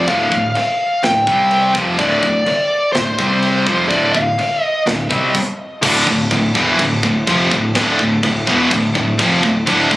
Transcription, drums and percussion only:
0.08 kick, china
0.32 kick
0.55 china
1.03 snare, china
1.27 kick
1.51 china
1.75 kick
1.99 kick, china
2.23 kick
2.46 china
2.94 snare, china
3.19 kick
3.42 china
3.67 kick
3.90 kick, china
4.14 kick
4.39 china
4.87 snare, china
5.11 kick
5.35 kick, crash
5.83 kick, crash
6.07 kick
6.31 kick, crash
6.55 kick
6.79 kick, crash
7.03 kick
7.27 kick, crash
7.51 kick
7.75 kick, snare, crash
7.99 kick
8.23 kick, crash
8.47 kick
8.71 kick, crash
8.95 kick
9.19 kick, crash
9.43 kick
9.67 kick, crash
9.91 kick

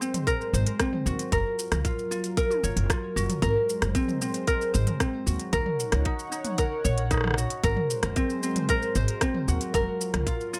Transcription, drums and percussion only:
0.02 shaker
0.14 closed hi-hat, mid tom, shaker
0.27 kick, closed hi-hat, shaker
0.41 shaker
0.54 shaker
0.67 closed hi-hat, shaker
0.80 kick, cross-stick, closed hi-hat, shaker
0.93 mid tom
1.06 shaker
1.19 closed hi-hat, shaker
1.32 kick, closed hi-hat, shaker
1.59 shaker
1.72 cross-stick, closed hi-hat, mid tom, shaker
1.85 kick, closed hi-hat, shaker
1.99 shaker
2.12 shaker
2.24 closed hi-hat, shaker
2.37 kick, closed hi-hat, shaker
2.50 mid tom, shaker
2.64 shaker
2.77 closed hi-hat, shaker
2.90 kick, cross-stick, closed hi-hat, shaker
3.17 shaker
3.30 closed hi-hat, mid tom, shaker
3.42 kick, closed hi-hat, shaker
3.69 shaker
3.82 cross-stick, closed hi-hat, shaker
3.95 kick, closed hi-hat, shaker
4.08 mid tom, shaker
4.22 shaker
4.34 closed hi-hat, shaker
4.47 kick, closed hi-hat, shaker
4.61 shaker
4.74 shaker
4.87 closed hi-hat, mid tom, shaker
5.00 kick, cross-stick, closed hi-hat, shaker
5.27 shaker
5.40 closed hi-hat, shaker
5.53 kick, closed hi-hat, shaker
5.66 mid tom
5.80 shaker
5.92 cross-stick, closed hi-hat, shaker
6.05 kick, closed hi-hat
6.19 shaker
6.32 shaker
6.45 closed hi-hat, mid tom, shaker
6.58 kick, closed hi-hat, shaker
6.85 shaker
6.98 closed hi-hat
7.11 kick, cross-stick, closed hi-hat, shaker
7.14 cross-stick
7.17 cross-stick
7.21 cross-stick
7.24 cross-stick, mid tom
7.27 cross-stick
7.31 cross-stick
7.34 cross-stick
7.38 shaker
7.50 closed hi-hat, shaker
7.64 kick, closed hi-hat, shaker
7.76 mid tom
7.90 shaker
8.03 cross-stick, closed hi-hat, shaker
8.16 kick, closed hi-hat, shaker
8.30 shaker
8.43 shaker
8.56 closed hi-hat, mid tom, shaker
8.69 kick, closed hi-hat, shaker
8.82 shaker
8.95 shaker
9.08 closed hi-hat, shaker
9.21 kick, cross-stick, closed hi-hat, shaker
9.34 mid tom
9.48 shaker
9.61 closed hi-hat, shaker
9.74 kick, closed hi-hat, shaker
10.01 shaker
10.14 cross-stick, closed hi-hat, mid tom, shaker
10.27 kick, closed hi-hat, shaker
10.41 shaker
10.54 shaker

